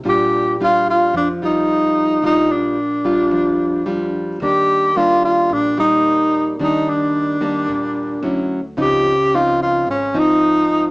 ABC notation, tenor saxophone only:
X:1
M:4/4
L:1/8
Q:1/4=110
K:Bb
V:1 name="Tenor saxophone"
G2 F F D E3 | E D6 z | G2 F F D E3 | E D6 z |
G2 F F _D E3 |]